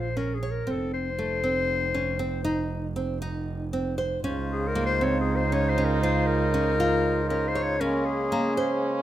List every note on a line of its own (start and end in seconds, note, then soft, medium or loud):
0.00 0.69 A#1 medium
0.00 0.18 C5 medium
0.17 0.37 C#4 medium
0.17 0.36 A#4 medium
0.35 0.53 G#4 medium
0.43 0.63 C#5 medium
0.51 0.72 A#4 medium
0.67 4.25 F1 medium
0.67 1.08 C4 medium
0.67 0.93 A4 medium
0.94 2.93 C5 medium
1.19 1.39 A3 medium
1.44 1.85 C4 medium
1.94 2.15 C#4 medium
2.19 2.40 C4 medium
2.44 2.86 D#4 medium
2.96 3.17 C4 medium
3.22 3.63 D#4 medium
3.73 3.94 C4 medium
3.98 4.19 C5 medium
4.22 7.77 C#2 medium
4.22 9.02 C#3 medium
4.22 4.65 C#4 medium
4.22 7.83 D#4 loud
4.22 7.76 F4 medium
4.22 7.76 C5 medium
4.51 4.69 G#4 medium
4.68 4.84 A#4 medium
4.75 4.96 A#3 medium
4.86 5.05 C5 medium
5.01 5.42 C4 medium
5.01 5.19 C#5 medium
5.20 5.37 G#4 medium
5.36 5.55 C5 medium
5.52 5.72 C#4 medium
5.52 5.71 C#5 medium
5.69 5.87 C5 medium
5.78 5.98 C#4 medium
5.85 6.02 A#4 medium
6.03 6.44 F4 medium
6.03 6.28 C5 medium
6.27 7.29 A#4 medium
6.54 6.74 C#4 medium
6.80 7.21 F4 medium
7.29 7.51 C#4 medium
7.29 7.50 A#4 medium
7.48 7.65 C5 medium
7.55 7.76 C#5 medium
7.63 7.82 C#5 medium
7.81 9.02 G#3 medium
7.81 9.02 A#3 medium
7.81 8.22 C#4 medium
7.81 9.02 C#4 loud
7.81 8.07 A#4 medium
8.06 9.02 G#4 medium
8.32 8.53 A#3 medium
8.57 8.99 C5 medium